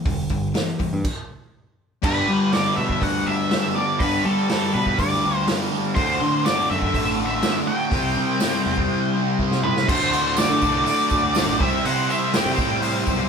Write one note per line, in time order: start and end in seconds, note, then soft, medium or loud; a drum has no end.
0.05 0.28 E1 medium
0.05 0.28 G2 medium
0.05 0.29 D3 medium
0.05 kick loud
0.05 open hi-hat medium
0.29 0.53 G1 medium
0.29 0.53 G2 medium
0.29 0.53 D3 medium
0.29 kick medium
0.29 open hi-hat soft
0.54 0.77 G2 medium
0.54 0.78 E3 medium
0.54 snare loud
0.54 open hi-hat medium
0.79 1.02 G2 medium
0.79 1.03 E3 medium
0.79 kick medium
0.79 open hi-hat soft
0.93 1.04 G2 medium
1.05 kick loud
1.05 crash medium
2.03 2.52 G2 medium
2.03 2.26 G2 medium
2.03 2.51 D3 medium
2.03 2.30 G3 medium
2.03 2.29 B3 medium
2.03 2.28 D4 medium
2.03 2.27 G4 medium
2.03 2.55 B4 medium
2.03 kick loud
2.03 crash loud
2.27 2.51 G3 medium
2.27 2.53 G3 medium
2.27 2.53 B3 medium
2.27 2.54 D4 medium
2.27 2.54 G4 medium
2.52 3.51 G2 medium
2.52 3.51 D3 medium
2.52 3.28 G3 medium
2.52 3.27 B3 medium
2.52 3.27 D4 medium
2.52 3.25 G4 medium
2.52 2.76 D5 medium
2.52 snare loud
2.52 open hi-hat medium
2.76 3.00 B2 medium
2.76 3.00 E5 medium
2.89 kick medium
3.02 3.24 D2 medium
3.02 3.28 F#5 medium
3.02 kick medium
3.02 open hi-hat medium
3.26 3.49 D2 medium
3.26 3.49 G3 medium
3.26 3.50 B3 medium
3.26 3.53 D4 medium
3.26 3.52 G4 medium
3.26 3.75 E5 loud
3.51 3.77 G3 medium
3.51 3.76 B3 medium
3.51 3.76 D4 medium
3.51 3.75 G4 medium
3.51 snare loud
3.51 open hi-hat soft
3.76 4.00 G3 medium
3.76 4.00 B3 medium
3.76 4.02 D4 medium
3.76 4.01 G4 medium
3.76 4.01 D5 medium
3.99 4.49 G2 medium
3.99 4.22 G2 medium
3.99 4.50 D3 medium
3.99 4.27 G3 medium
3.99 4.27 B3 medium
3.99 4.26 D4 loud
3.99 4.25 G4 medium
3.99 4.25 B4 medium
3.99 kick loud
3.99 open hi-hat medium
4.25 4.47 G3 medium
4.25 4.50 G3 medium
4.25 4.51 B3 medium
4.25 4.52 D4 medium
4.25 4.52 G4 medium
4.25 4.49 A4 medium
4.49 5.48 G2 medium
4.49 5.48 D3 medium
4.49 5.25 G3 medium
4.49 5.24 B3 medium
4.49 5.23 D4 medium
4.49 5.22 G4 loud
4.49 4.74 A4 medium
4.49 snare loud
4.49 open hi-hat medium
4.74 4.97 B2 loud
4.74 4.97 B4 medium
4.86 kick medium
4.99 5.21 D2 medium
4.99 5.45 D5 medium
4.99 kick medium
4.99 open hi-hat medium
5.11 snare soft
5.23 5.47 D2 medium
5.23 5.46 G3 medium
5.23 5.48 B3 medium
5.23 5.49 D4 medium
5.23 5.49 G4 medium
5.47 5.74 G3 medium
5.47 5.73 B3 medium
5.47 5.72 D4 medium
5.47 5.71 G4 medium
5.47 snare loud
5.47 open hi-hat medium
5.72 5.97 G3 medium
5.72 5.96 B3 medium
5.72 5.96 D4 medium
5.72 5.95 G4 medium
5.95 6.44 D2 medium
5.95 6.19 D2 medium
5.95 6.45 A2 medium
5.95 6.23 D3 medium
5.95 6.21 A3 loud
5.95 6.20 F#4 loud
5.95 6.47 C5 medium
5.95 kick loud
5.95 open hi-hat medium
6.21 6.43 D3 loud
6.21 6.45 D3 medium
6.21 6.46 A3 medium
6.21 6.47 F#4 medium
6.45 7.44 D2 loud
6.45 7.41 A2 medium
6.45 7.21 D3 medium
6.45 7.19 A3 medium
6.45 7.18 F#4 loud
6.45 6.68 D5 medium
6.45 snare loud
6.45 open hi-hat medium
6.45 tambourine medium
6.70 6.93 F#2 loud
6.70 7.16 E5 medium
6.82 kick medium
6.94 7.17 A1 medium
6.94 kick loud
6.94 open hi-hat medium
7.18 7.41 A1 medium
7.18 7.43 D3 medium
7.18 7.43 A3 medium
7.18 7.44 F#4 medium
7.26 7.57 E5 medium
7.42 7.91 A2 medium
7.42 7.69 D3 medium
7.42 7.67 A3 medium
7.42 7.66 F#4 medium
7.42 snare loud
7.42 open hi-hat medium
7.42 tambourine medium
7.67 7.92 D3 medium
7.67 7.91 A3 medium
7.67 7.91 F#4 medium
7.67 9.36 G5 medium
7.92 8.14 C2 medium
7.92 8.38 C3 medium
7.92 8.39 G3 medium
7.92 8.18 C4 loud
7.92 8.17 E4 medium
7.92 8.16 G4 medium
7.92 8.15 C5 medium
7.92 kick loud
7.92 open hi-hat medium
8.16 8.39 C3 loud
8.16 8.39 C4 medium
8.16 8.40 E4 medium
8.16 8.40 G4 medium
8.16 8.41 C5 medium
8.40 9.39 C3 loud
8.40 9.39 G3 medium
8.40 9.15 C4 medium
8.40 9.14 E4 loud
8.40 9.14 G4 medium
8.40 9.12 C5 medium
8.40 snare loud
8.40 open hi-hat medium
8.40 tambourine medium
8.66 8.88 E2 loud
8.78 kick medium
9.14 9.38 C4 medium
9.14 9.39 E4 medium
9.14 9.39 G4 medium
9.14 9.40 C5 medium
9.39 9.65 C4 medium
9.39 9.64 E4 medium
9.39 9.63 G4 medium
9.39 9.62 C5 medium
9.39 kick medium
9.52 snare medium
9.63 9.88 C4 medium
9.63 9.88 E4 medium
9.63 9.88 G4 medium
9.63 9.88 B4 medium
9.63 9.87 C5 medium
9.63 mid tom medium
9.76 snare medium
9.88 10.35 D2 medium
9.88 10.44 D2 loud
9.88 10.36 A2 loud
9.88 10.14 D3 loud
9.88 10.12 A3 medium
9.88 11.59 D4 medium
9.88 11.59 F#4 medium
9.88 10.11 F#4 loud
9.88 11.59 A4 medium
9.88 10.40 C5 medium
9.88 11.59 D5 medium
9.88 kick loud
9.88 crash loud
10.12 10.37 D3 medium
10.12 10.38 A3 medium
10.12 10.38 F#4 medium
10.12 tambourine medium
10.36 10.86 D2 medium
10.36 10.87 A2 loud
10.36 10.62 D3 loud
10.36 10.62 A3 medium
10.36 10.60 F#4 loud
10.36 10.84 D5 medium
10.36 snare loud
10.36 open hi-hat medium
10.36 tambourine loud
10.50 10.61 D3 loud
10.61 10.85 C2 medium
10.61 11.60 D2 medium
10.61 11.59 A2 medium
10.61 11.35 D3 medium
10.61 11.37 A3 medium
10.61 11.37 F#4 medium
10.61 kick medium
10.61 tambourine medium
10.85 11.58 D2 loud
10.85 11.33 A2 loud
10.85 11.34 D3 loud
10.85 11.35 A3 loud
10.85 11.35 F#4 loud
10.85 11.61 D5 medium
10.85 open hi-hat medium
10.85 tambourine medium
11.10 11.23 D2 medium
11.10 kick medium
11.10 tambourine medium
11.24 11.46 D2 medium
11.35 11.59 A2 medium
11.35 11.59 D3 medium
11.35 11.60 A3 medium
11.35 11.60 F#4 medium
11.35 snare loud
11.35 open hi-hat medium
11.35 tambourine loud
11.48 11.59 A1 loud
11.59 11.82 C2 medium
11.59 11.84 G3 medium
11.59 13.29 C4 medium
11.59 11.85 C4 medium
11.59 13.29 E4 medium
11.59 11.85 E4 medium
11.59 13.29 G4 medium
11.59 11.86 G4 medium
11.59 13.29 C5 medium
11.59 11.87 C5 medium
11.59 11.86 E5 medium
11.59 kick loud
11.63 11.83 C3 medium
11.84 12.34 C3 medium
11.84 12.07 C3 medium
11.84 12.34 G3 medium
11.84 12.13 C4 medium
11.84 12.12 E4 loud
11.84 12.10 G4 medium
11.84 12.10 C5 loud
11.84 12.11 F#5 loud
11.84 open hi-hat medium
12.10 12.36 C4 medium
12.10 12.35 E4 medium
12.10 12.36 G4 medium
12.10 12.37 C5 medium
12.10 12.35 E5 loud
12.10 tambourine medium
12.32 12.83 C3 loud
12.32 12.84 G3 medium
12.32 12.58 C4 medium
12.32 12.80 G5 medium
12.32 snare loud
12.32 open hi-hat medium
12.32 tambourine medium
12.36 12.60 C4 loud
12.36 12.59 E4 loud
12.36 12.59 G4 loud
12.36 12.58 C5 loud
12.46 12.57 C3 medium
12.58 13.02 A2 medium
12.58 13.29 C4 medium
12.58 13.29 E4 medium
12.58 13.29 G4 medium
12.58 13.29 C5 medium
12.58 kick medium
12.58 tambourine medium
12.81 13.29 C3 loud
12.81 13.29 G3 loud
12.81 13.29 C4 loud
12.81 13.29 E4 loud
12.81 13.29 G4 loud
12.81 13.29 C5 loud
12.81 open hi-hat medium
12.81 tambourine medium
13.07 13.29 B1 loud
13.07 kick medium
13.07 tambourine medium